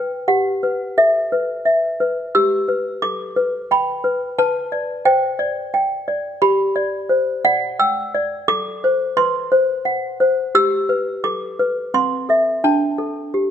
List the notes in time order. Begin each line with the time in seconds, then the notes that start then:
Already playing: B4 G5
0.28 G4 F#5
0.63 B4
0.98 A4 E5
1.32 B4
1.65 E5
2.00 B4
2.35 G4 E6
2.68 B4
3.02 A4 D6
3.36 B4
3.71 G5 B5
4.04 B4
4.39 B4 A5
4.72 D5
5.05 C5 G5
5.39 D5
5.74 G5
6.08 D5
6.42 G4 B5
6.76 D5
7.09 C5
7.45 D5 F#5
7.79 G5 E6
8.15 D5
8.48 A4 D6
8.84 C5
9.17 B4 C6
9.52 C5
9.85 F#5
10.20 C5
10.55 G4 E6
10.89 B4
11.24 A4 D6
11.59 B4
11.94 C4 C6
12.29 A4 E5
12.64 D4 A5
12.98 A4
13.34 G4